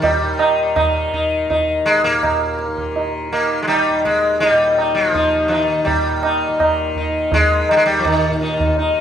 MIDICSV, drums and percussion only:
0, 0, Header, 1, 2, 480
1, 0, Start_track
1, 0, Tempo, 729040
1, 19, Time_signature, 4, 2, 24, 8
1, 5930, End_track
2, 0, Start_track
2, 0, Title_t, "Tabla"
2, 23, Note_on_c, 9, 63, 94
2, 23, Note_on_c, 9, 64, 78
2, 88, Note_off_c, 9, 63, 0
2, 88, Note_off_c, 9, 64, 0
2, 259, Note_on_c, 9, 60, 71
2, 325, Note_off_c, 9, 60, 0
2, 502, Note_on_c, 9, 60, 62
2, 502, Note_on_c, 9, 64, 50
2, 568, Note_off_c, 9, 60, 0
2, 568, Note_off_c, 9, 64, 0
2, 743, Note_on_c, 9, 64, 46
2, 809, Note_off_c, 9, 64, 0
2, 990, Note_on_c, 9, 63, 65
2, 990, Note_on_c, 9, 64, 60
2, 1056, Note_off_c, 9, 63, 0
2, 1056, Note_off_c, 9, 64, 0
2, 1226, Note_on_c, 9, 60, 52
2, 1292, Note_off_c, 9, 60, 0
2, 1469, Note_on_c, 9, 60, 67
2, 1469, Note_on_c, 9, 64, 59
2, 1535, Note_off_c, 9, 60, 0
2, 1535, Note_off_c, 9, 64, 0
2, 1704, Note_on_c, 9, 62, 52
2, 1770, Note_off_c, 9, 62, 0
2, 1825, Note_on_c, 9, 64, 44
2, 1891, Note_off_c, 9, 64, 0
2, 1949, Note_on_c, 9, 63, 68
2, 2014, Note_off_c, 9, 63, 0
2, 2193, Note_on_c, 9, 60, 46
2, 2259, Note_off_c, 9, 60, 0
2, 2431, Note_on_c, 9, 60, 60
2, 2497, Note_off_c, 9, 60, 0
2, 2671, Note_on_c, 9, 37, 52
2, 2737, Note_off_c, 9, 37, 0
2, 2909, Note_on_c, 9, 63, 63
2, 2975, Note_off_c, 9, 63, 0
2, 3150, Note_on_c, 9, 60, 54
2, 3216, Note_off_c, 9, 60, 0
2, 3389, Note_on_c, 9, 63, 70
2, 3389, Note_on_c, 9, 64, 63
2, 3454, Note_off_c, 9, 63, 0
2, 3454, Note_off_c, 9, 64, 0
2, 3624, Note_on_c, 9, 60, 50
2, 3690, Note_off_c, 9, 60, 0
2, 3863, Note_on_c, 9, 63, 93
2, 3863, Note_on_c, 9, 64, 77
2, 3929, Note_off_c, 9, 63, 0
2, 3929, Note_off_c, 9, 64, 0
2, 4102, Note_on_c, 9, 60, 66
2, 4168, Note_off_c, 9, 60, 0
2, 4346, Note_on_c, 9, 60, 63
2, 4346, Note_on_c, 9, 64, 57
2, 4412, Note_off_c, 9, 60, 0
2, 4412, Note_off_c, 9, 64, 0
2, 4579, Note_on_c, 9, 64, 45
2, 4645, Note_off_c, 9, 64, 0
2, 4818, Note_on_c, 9, 63, 72
2, 4818, Note_on_c, 9, 64, 64
2, 4884, Note_off_c, 9, 63, 0
2, 4884, Note_off_c, 9, 64, 0
2, 5064, Note_on_c, 9, 60, 58
2, 5130, Note_off_c, 9, 60, 0
2, 5301, Note_on_c, 9, 60, 66
2, 5301, Note_on_c, 9, 64, 62
2, 5367, Note_off_c, 9, 60, 0
2, 5367, Note_off_c, 9, 64, 0
2, 5539, Note_on_c, 9, 62, 52
2, 5605, Note_off_c, 9, 62, 0
2, 5662, Note_on_c, 9, 64, 47
2, 5728, Note_off_c, 9, 64, 0
2, 5775, Note_on_c, 9, 63, 75
2, 5841, Note_off_c, 9, 63, 0
2, 5930, End_track
0, 0, End_of_file